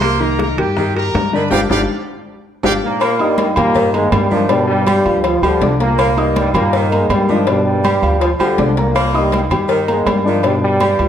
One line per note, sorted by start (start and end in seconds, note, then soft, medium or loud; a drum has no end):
0.00 0.52 C2 medium
0.00 0.14 G3 medium
0.00 0.47 A#3 medium
0.00 0.14 G4 medium
0.00 0.14 A#4 medium
0.00 0.21 C5 loud
0.00 0.22 C6 medium
0.00 high bongo medium
0.00 high conga soft
0.00 high timbale medium
0.20 0.51 D#3 loud
0.20 0.51 D#4 medium
0.20 0.40 A#4 medium
0.20 0.52 D#5 medium
0.20 0.40 A#5 medium
0.20 high bongo soft
0.20 high conga soft
0.39 0.58 A#4 loud
0.39 0.58 A#5 medium
0.39 high bongo medium
0.39 high conga medium
0.39 high timbale medium
0.57 1.10 G2 medium
0.57 0.89 G3 medium
0.57 0.89 G4 medium
0.57 0.96 G4 loud
0.57 0.89 A#4 medium
0.57 0.96 G5 medium
0.57 high conga soft
0.57 low conga medium
0.57 high timbale medium
0.76 1.08 D#3 medium
0.76 high bongo medium
0.76 high conga soft
0.76 low conga medium
0.95 1.26 G3 medium
0.95 1.26 G4 medium
0.95 1.27 A#4 medium
0.95 1.31 A#4 loud
0.95 1.31 A#5 medium
0.95 high bongo soft
0.95 high conga soft
0.95 high timbale medium
1.14 1.49 G2 medium
1.14 high bongo soft
1.14 low bongo medium
1.14 high conga medium
1.14 high timbale medium
1.14 low timbale medium
1.32 1.48 D3 medium
1.32 1.44 D#3 medium
1.32 1.49 D4 medium
1.32 1.52 B4 medium
1.32 1.49 D5 medium
1.32 1.52 B5 medium
1.32 high bongo soft
1.32 high conga soft
1.50 1.66 G1 loud
1.50 1.61 D3 loud
1.50 1.61 F3 loud
1.50 1.61 G3 loud
1.50 1.64 D4 medium
1.50 1.64 F4 medium
1.50 1.64 G4 medium
1.50 1.60 D5 medium
1.50 1.60 F5 loud
1.50 1.60 G5 loud
1.50 high bongo medium
1.50 high conga loud
1.50 high timbale loud
1.70 1.84 G1 loud
1.70 1.80 D3 loud
1.70 1.80 F3 loud
1.70 1.80 G3 loud
1.70 1.83 D4 loud
1.70 1.83 F4 loud
1.70 1.83 G4 loud
1.70 1.80 D5 loud
1.70 1.80 F5 loud
1.70 1.80 G5 loud
1.70 high bongo loud
1.70 high conga loud
1.70 high timbale loud
2.63 2.78 G1 medium
2.63 2.73 D3 loud
2.63 2.72 F3 medium
2.63 2.73 G3 medium
2.63 2.76 D4 loud
2.63 2.76 F4 loud
2.63 2.76 G4 loud
2.63 2.73 D5 loud
2.63 2.73 F5 loud
2.63 2.73 G5 loud
2.63 high bongo loud
2.63 high conga loud
2.63 high timbale loud
2.83 3.18 A#2 medium
2.83 3.18 A#3 loud
3.00 3.44 A#3 medium
3.00 cowbell loud
3.00 high conga soft
3.00 low agogo loud
3.19 3.38 G2 medium
3.19 3.37 G3 loud
3.19 3.51 D#4 medium
3.19 3.51 D#5 medium
3.19 3.51 D#6 medium
3.19 high conga soft
3.19 low agogo medium
3.38 3.56 G2 medium
3.38 3.56 G3 loud
3.38 cowbell medium
3.38 high conga loud
3.38 low timbale medium
3.38 low agogo medium
3.55 4.09 G2 loud
3.55 3.92 A#2 medium
3.55 3.88 G3 medium
3.55 3.91 A#3 loud
3.55 3.88 G4 medium
3.55 3.88 G5 medium
3.55 cowbell medium
3.55 high conga soft
3.55 low conga medium
3.55 low agogo loud
3.75 4.06 D#3 medium
3.75 cowbell loud
3.75 high conga soft
3.75 low conga medium
3.94 4.12 G#2 medium
3.94 4.11 G#3 loud
3.94 4.25 A#3 medium
3.94 4.25 A#4 medium
3.94 4.25 A#5 medium
3.94 high conga soft
3.94 low agogo medium
4.12 5.00 G2 medium
4.12 4.32 G2 medium
4.12 4.31 G3 loud
4.12 cowbell medium
4.12 high conga medium
4.12 low timbale medium
4.12 low agogo loud
4.31 4.62 D#3 medium
4.31 4.48 F3 loud
4.31 4.47 D4 medium
4.31 4.49 F4 medium
4.31 4.47 D5 medium
4.31 4.47 D6 medium
4.31 high conga medium
4.49 4.68 G2 medium
4.49 4.80 B2 medium
4.49 4.66 G3 loud
4.49 4.81 D4 medium
4.49 4.81 D5 medium
4.49 cowbell loud
4.49 high conga soft
4.49 low agogo medium
4.67 5.21 G2 medium
4.67 5.20 G3 loud
4.67 high conga soft
4.86 5.02 G3 medium
4.86 5.18 G3 medium
4.86 5.02 G4 medium
4.86 5.02 G5 medium
4.86 cowbell medium
4.86 high conga loud
4.86 low timbale medium
4.86 low agogo loud
5.05 5.40 D2 loud
5.05 5.36 F3 medium
5.05 5.36 F4 medium
5.05 5.36 F5 medium
5.05 high conga soft
5.05 low agogo medium
5.24 5.43 F3 medium
5.24 5.44 F4 medium
5.24 cowbell loud
5.24 high conga soft
5.24 low agogo medium
5.42 5.60 D2 medium
5.42 5.80 D3 loud
5.42 5.74 F3 medium
5.42 5.58 G3 medium
5.42 5.81 D4 medium
5.42 5.58 G4 medium
5.42 5.58 G5 medium
5.42 high conga soft
5.42 low agogo loud
5.61 6.48 C2 medium
5.61 5.77 D4 medium
5.61 5.77 D5 medium
5.61 5.78 D6 medium
5.61 cowbell medium
5.61 high conga medium
5.61 low timbale medium
5.80 6.16 A#2 medium
5.80 6.11 A#3 medium
5.80 6.15 A#3 loud
5.80 6.11 A#4 medium
5.80 6.11 A#5 medium
5.80 cowbell medium
5.98 6.42 A#3 loud
5.98 cowbell loud
5.98 high conga soft
5.98 low agogo loud
6.17 6.36 G2 medium
6.17 6.35 G3 medium
6.17 6.48 D#4 medium
6.17 6.48 D#5 medium
6.17 6.48 D#6 medium
6.17 high conga soft
6.17 low agogo medium
6.36 6.54 G2 medium
6.36 6.53 G3 loud
6.36 cowbell medium
6.36 high conga loud
6.36 low timbale medium
6.36 low agogo medium
6.54 7.06 G2 loud
6.54 6.90 A#2 medium
6.54 6.85 G3 medium
6.54 6.89 A#3 loud
6.54 6.85 G4 medium
6.54 6.85 G5 medium
6.54 cowbell medium
6.54 high conga soft
6.54 low conga medium
6.54 low agogo loud
6.73 7.05 D#3 loud
6.73 cowbell loud
6.73 high conga soft
6.91 7.11 G#2 medium
6.91 7.10 G#3 medium
6.91 7.22 A#3 medium
6.91 7.22 A#4 medium
6.91 7.23 A#5 medium
6.91 high conga soft
6.91 low agogo medium
7.09 7.97 G2 loud
7.09 7.29 G2 medium
7.09 7.28 G3 loud
7.09 cowbell medium
7.09 high conga medium
7.09 low timbale medium
7.09 low agogo loud
7.28 7.60 D#3 medium
7.28 7.46 F3 medium
7.28 7.44 D4 medium
7.28 7.47 F4 medium
7.28 7.45 D5 medium
7.28 7.45 D6 medium
7.28 high conga medium
7.47 7.65 G2 medium
7.47 7.78 B2 medium
7.47 7.64 G3 medium
7.47 7.79 D4 medium
7.47 7.79 D5 medium
7.47 cowbell loud
7.47 low agogo medium
7.65 8.18 G2 medium
7.65 8.17 G3 loud
7.65 high conga soft
7.84 8.15 G3 medium
7.84 8.00 G3 medium
7.84 8.00 G4 medium
7.84 8.00 G5 medium
7.84 cowbell medium
7.84 high conga loud
7.84 low timbale medium
7.84 low agogo loud
8.02 8.37 D2 loud
8.02 8.33 F3 medium
8.02 8.33 F4 medium
8.02 8.33 F5 medium
8.02 high conga soft
8.02 low agogo medium
8.20 8.28 F3 medium
8.20 8.30 F4 medium
8.20 cowbell loud
8.20 high conga soft
8.20 low agogo medium
8.39 8.57 D2 medium
8.39 8.74 D3 medium
8.39 8.70 F3 medium
8.39 8.55 G3 medium
8.39 8.75 D4 medium
8.39 8.56 G4 medium
8.39 8.56 G5 medium
8.39 high conga soft
8.39 low agogo loud
8.58 9.45 C2 medium
8.58 8.74 D4 medium
8.58 8.74 D5 medium
8.58 8.74 D6 medium
8.58 cowbell medium
8.58 high conga medium
8.58 low timbale medium
8.77 9.15 A#2 medium
8.77 9.14 A#3 loud
8.77 9.08 A#3 medium
8.77 9.08 A#4 medium
8.77 9.08 A#5 medium
8.77 cowbell medium
8.94 9.39 A#3 loud
8.94 cowbell loud
8.94 high conga soft
8.94 low agogo loud
9.14 9.33 G2 medium
9.14 9.33 G3 medium
9.14 9.45 D#4 medium
9.14 9.45 D#5 medium
9.14 9.45 D#6 medium
9.14 low agogo medium
9.32 9.43 G2 medium
9.32 9.42 G3 medium
9.32 cowbell medium
9.32 high conga loud
9.32 low timbale medium
9.32 low agogo medium
9.50 10.02 G2 medium
9.50 9.82 G3 medium
9.50 9.82 G4 medium
9.50 9.82 G5 medium
9.50 cowbell medium
9.50 high conga soft
9.50 low conga medium
9.50 low agogo loud
9.69 10.00 D#3 medium
9.69 cowbell loud
9.69 high conga soft
9.88 10.06 G#2 medium
9.88 10.07 G#3 medium
9.88 10.18 A#3 medium
9.88 10.18 A#4 medium
9.88 10.19 A#5 medium
9.88 high conga soft
9.88 low agogo medium
10.06 10.93 G2 medium
10.06 10.25 G2 medium
10.06 10.25 G3 medium
10.06 cowbell medium
10.06 high conga medium
10.06 low timbale medium
10.06 low agogo loud
10.25 10.57 D#3 medium
10.25 10.45 F3 medium
10.25 10.40 D4 medium
10.25 10.44 F4 medium
10.25 10.40 D5 medium
10.25 10.41 D6 medium
10.43 10.53 G2 medium
10.43 10.74 B2 medium
10.43 10.54 G3 medium
10.43 10.74 D4 medium
10.43 10.75 D5 medium
10.43 cowbell loud
10.43 high conga soft
10.43 low agogo medium
10.62 11.08 G2 medium
10.62 11.08 G3 loud
10.62 high conga soft
10.80 10.96 G3 medium
10.80 11.08 G3 medium
10.80 10.96 G4 medium
10.80 10.96 G5 medium
10.80 cowbell medium
10.80 high conga loud
10.80 low timbale medium
10.80 low agogo loud
10.99 11.08 D2 loud
10.99 11.08 F3 medium
10.99 11.08 F4 medium
10.99 11.08 F5 medium
10.99 high conga soft
10.99 low agogo medium